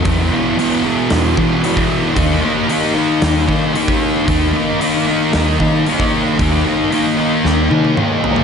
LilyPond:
<<
  \new Staff \with { instrumentName = "Distorted electric guitar" } { \time 4/4 \key dis \phrygian \tempo 4 = 114 <e, b, e>8 <b, e>8 <e, b, e>8 <b, e>4 <b, e>8 <e, b, e>4 | <dis ais dis'>8 <ais dis'>8 <dis ais dis'>8 <ais dis'>4 <ais dis'>8 <dis ais dis'>4 | <dis ais dis'>8 <ais dis'>8 <dis ais dis'>8 <ais dis'>4 <ais dis'>8 <dis ais dis'>4 | <dis ais dis'>8 <ais dis'>8 <dis ais dis'>8 <ais dis'>4 <ais dis'>8 <dis ais dis'>4 | }
  \new Staff \with { instrumentName = "Fingered electric bass" } { \clef bass \time 4/4 \key dis \phrygian e,8 r4. e,8 e8 r4 | dis,8 r4. dis,8 dis8 r4 | dis,8 r4. dis,8 dis8 r4 | dis,8 r4. dis,8 dis8 r4 | }
  \new DrumStaff \with { instrumentName = "Drums" } \drummode { \time 4/4 <hho bd>4 hho4 <hho sn>8 bd8 hho16 bd8. | <hho bd>4 hho4 <hho sn>8 bd8 hho16 bd8. | <hho bd>4 hho4 <hho sn>8 bd8 hho16 bd8. | <hho bd>4 hho4 sn8 tommh16 tommh16 toml8 tomfh16 tomfh16 | }
>>